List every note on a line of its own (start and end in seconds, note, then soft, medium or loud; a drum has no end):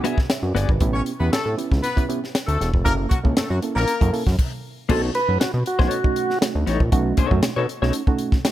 0.04 0.18 B3 medium
0.04 0.15 B3 medium
0.04 0.15 D4 medium
0.04 0.18 F#4 medium
0.04 0.15 F#4 medium
0.04 0.18 G#4 loud
0.04 0.15 G#4 medium
0.04 0.18 E5 medium
0.04 closed hi-hat medium
0.18 0.24 G#4 soft
0.18 kick medium
0.18 snare soft
0.30 0.43 C#5 medium
0.30 0.43 E5 medium
0.30 snare loud
0.30 closed hi-hat medium
0.43 0.53 F#2 medium
0.43 0.68 B4 medium
0.43 0.68 D5 medium
0.55 0.66 G1 loud
0.55 0.69 B3 medium
0.55 0.69 F#4 medium
0.55 0.69 G#4 medium
0.55 0.70 D5 medium
0.55 snare soft
0.55 closed hi-hat medium
0.69 0.79 G#1 medium
0.69 0.94 G#4 medium
0.69 0.93 B4 medium
0.69 kick loud
0.80 1.02 A1 loud
0.80 1.10 B3 loud
0.80 1.11 C#4 medium
0.80 1.11 E4 loud
0.80 1.11 G4 loud
0.80 kick loud
0.80 closed hi-hat medium
0.93 1.01 C#4 medium
0.93 1.01 C#5 medium
1.06 closed hi-hat medium
1.20 1.30 E2 medium
1.20 1.30 B3 medium
1.20 1.39 B3 medium
1.20 1.39 C#4 medium
1.20 1.39 E4 medium
1.20 1.40 G4 medium
1.20 1.30 B4 medium
1.32 1.38 A2 soft
1.32 1.52 A3 medium
1.32 1.53 A4 loud
1.32 snare loud
1.32 closed hi-hat medium
1.46 1.56 A2 medium
1.46 1.51 E4 soft
1.46 1.52 G4 soft
1.57 1.87 B3 medium
1.57 1.87 C#4 medium
1.57 1.87 E4 medium
1.57 1.87 G4 loud
1.57 closed hi-hat medium
1.72 1.82 C#2 medium
1.72 kick loud
1.72 snare soft
1.83 2.04 B3 loud
1.83 2.03 B4 loud
1.83 closed hi-hat medium
1.96 2.06 B3 medium
1.96 2.06 C#4 medium
1.96 2.06 E4 medium
1.96 2.06 G4 loud
1.96 kick medium
1.96 closed hi-hat medium
2.09 2.19 B3 loud
2.09 2.19 C#4 medium
2.09 2.19 E4 medium
2.09 2.19 G4 medium
2.09 closed hi-hat medium
2.24 snare soft
2.35 snare loud
2.35 closed hi-hat loud
2.47 2.58 D2 medium
2.47 2.68 A3 medium
2.47 2.67 A4 loud
2.47 closed hi-hat medium
2.60 2.72 E1 loud
2.60 2.66 E4 soft
2.60 2.66 G4 soft
2.60 snare soft
2.60 closed hi-hat medium
2.74 2.84 F1 loud
2.74 kick medium
2.84 3.07 F#1 loud
2.84 2.93 A#3 loud
2.84 3.14 A#3 loud
2.84 3.14 C#4 medium
2.84 3.14 E4 medium
2.84 3.14 A4 loud
2.84 2.93 A#4 loud
2.84 kick medium
2.84 closed hi-hat medium
3.10 3.18 F#3 medium
3.10 3.18 F#4 medium
3.10 kick medium
3.10 closed hi-hat medium
3.23 3.35 C#2 medium
3.23 3.43 A#3 medium
3.23 3.43 C#4 medium
3.23 3.43 E4 medium
3.23 3.43 A4 medium
3.23 kick medium
3.37 3.42 F#2 medium
3.37 3.47 A3 medium
3.37 3.48 A4 medium
3.37 snare loud
3.37 closed hi-hat medium
3.50 3.60 F#2 loud
3.50 3.57 F#3 medium
3.50 3.57 F#4 medium
3.62 3.91 A#3 medium
3.62 3.91 C#4 medium
3.62 3.92 E4 medium
3.62 3.92 A4 loud
3.62 closed hi-hat medium
3.76 3.86 A#1 medium
3.76 4.11 A#3 loud
3.76 4.11 A#4 loud
3.76 snare soft
3.88 closed hi-hat medium
4.01 4.11 F#2 loud
4.01 4.10 A#3 loud
4.01 4.10 C#4 medium
4.01 4.10 E4 medium
4.01 4.10 A4 loud
4.01 kick medium
4.01 closed hi-hat medium
4.13 4.23 A#3 medium
4.13 4.23 C#4 medium
4.13 4.23 E4 medium
4.13 4.23 A4 medium
4.13 open hi-hat medium
4.27 4.36 F#2 medium
4.27 4.32 E4 soft
4.27 kick medium
4.27 snare soft
4.39 kick loud
4.39 crash medium
4.89 5.11 B1 loud
4.89 5.18 A3 loud
4.89 5.09 B3 medium
4.89 5.18 C#4 medium
4.89 5.10 D#4 medium
4.89 5.19 D#4 medium
4.89 5.19 F#4 loud
4.89 5.10 A4 medium
4.89 5.02 A4 loud
4.89 5.10 C#5 medium
4.89 kick loud
4.89 crash loud
5.15 5.38 B4 loud
5.15 closed hi-hat medium
5.28 5.38 F#2 medium
5.28 5.47 A3 medium
5.28 5.47 C#4 medium
5.28 5.47 D#4 medium
5.28 5.47 F#4 medium
5.40 5.46 B2 soft
5.40 5.52 F#4 medium
5.40 snare loud
5.40 closed hi-hat medium
5.53 5.64 B2 loud
5.53 5.59 D#4 soft
5.53 5.59 F#4 soft
5.66 6.38 F#4 loud
5.66 closed hi-hat medium
5.79 5.89 B1 loud
5.79 5.98 A3 medium
5.79 6.00 B3 medium
5.79 5.98 C#4 medium
5.79 5.98 D#4 medium
5.79 5.99 D#4 medium
5.79 5.98 F#4 loud
5.79 5.99 A4 medium
5.79 5.98 C#5 medium
5.79 kick loud
5.79 snare soft
5.91 closed hi-hat medium
6.04 6.33 A3 medium
6.04 6.33 C#4 medium
6.04 6.33 D#4 medium
6.04 6.33 F#4 loud
6.04 kick loud
6.16 closed hi-hat medium
6.30 snare soft
6.41 6.70 A3 medium
6.41 6.70 C#4 medium
6.41 6.70 D#4 medium
6.41 6.71 F#4 medium
6.41 snare loud
6.41 closed hi-hat loud
6.55 6.65 D2 medium
6.67 6.78 A1 loud
6.67 6.80 B3 medium
6.67 6.81 D#4 loud
6.67 6.81 A4 medium
6.67 6.81 C#5 medium
6.67 snare soft
6.67 closed hi-hat medium
6.80 6.90 A#1 medium
6.80 6.86 D#4 soft
6.80 6.86 F#4 soft
6.80 kick medium
6.92 7.14 B1 loud
6.92 7.21 A3 loud
6.92 7.21 C#4 loud
6.92 7.21 D#4 loud
6.92 7.22 F#4 loud
6.92 kick loud
6.92 closed hi-hat medium
7.17 7.38 B3 medium
7.17 7.38 D#4 medium
7.17 7.38 A4 medium
7.17 7.39 C#5 medium
7.17 kick loud
7.17 closed hi-hat medium
7.31 7.41 F#2 loud
7.31 7.50 A3 medium
7.31 7.50 C#4 medium
7.31 7.50 D#4 medium
7.31 7.50 F#4 loud
7.31 kick medium
7.43 7.49 B2 medium
7.43 snare loud
7.43 closed hi-hat medium
7.56 7.67 B2 loud
7.56 7.69 B3 medium
7.56 7.69 D#4 medium
7.56 7.69 A4 medium
7.56 7.68 C#5 medium
7.69 closed hi-hat medium
7.82 7.92 B1 loud
7.82 8.01 A3 medium
7.82 7.92 B3 medium
7.82 8.01 C#4 medium
7.82 8.01 D#4 medium
7.82 7.92 D#4 medium
7.82 8.01 F#4 loud
7.82 7.92 A4 medium
7.82 7.91 C#5 medium
7.82 snare soft
7.93 closed hi-hat medium
8.07 8.36 A3 loud
8.07 8.36 C#4 medium
8.07 8.36 D#4 loud
8.07 8.36 F#4 loud
8.07 kick loud
8.19 closed hi-hat medium
8.32 kick loud
8.32 snare soft
8.45 8.52 A3 medium
8.45 8.52 C#4 medium
8.45 8.52 D#4 medium
8.45 8.52 F#4 medium
8.45 snare loud
8.45 closed hi-hat loud